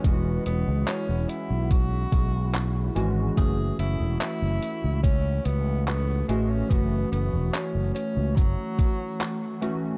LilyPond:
<<
  \new Staff \with { instrumentName = "Ambient pad" } { \time 4/4 \key fis \dorian \tempo 4 = 72 <e' gis' fis'' b''>1 | <e a fis'' cis'''>1~ | <e a fis'' cis'''>1 | }
  \new Staff \with { instrumentName = "Tenor saxophone" } { \time 4/4 \key fis \dorian b8 b8 cis'8 e'8 fis'4. r8 | gis'8 e'8 e'4 cis'8 b8 b8 gis16 cis'16 | b8 b8 cis'8 cis'8 fis4. r8 | }
  \new Staff \with { instrumentName = "Synth keys" } { \time 4/4 \key fis \dorian <e gis cis' fis'>2.~ <e gis cis' fis'>8 <e gis cis' fis'>8 | <e a cis' fis'>2.~ <e a cis' fis'>8 <e a cis' fis'>8 | <e a cis' fis'>2.~ <e a cis' fis'>8 <e a cis' fis'>8 | }
  \new Staff \with { instrumentName = "Fretless electric bass" } { \clef bass \time 4/4 \key fis \dorian e,,8 e,,16 cis,16 r16 e,,16 r16 b,,8. b,,4 gis,,8 | fis,,8 fis,,16 e,,16 r16 fis,,16 r16 cis,8. cis,4 a,,8 | fis,,8 fis,,16 e,,16 r16 fis,,16 r16 cis,16 fis,,16 r4. r16 | }
  \new DrumStaff \with { instrumentName = "Drums" } \drummode { \time 4/4 <hh bd>8 hh8 <hc hh>8 hh8 <hh bd>8 <hh bd>8 <hc hh>8 hh8 | <hh bd>8 hh8 <hc hh>8 hh8 <hh bd>8 hh8 <hc hh>8 hh8 | <hh bd>8 hh8 <hc hh>8 hh8 <hh bd>8 <hh bd>8 <hc hh>8 hh8 | }
>>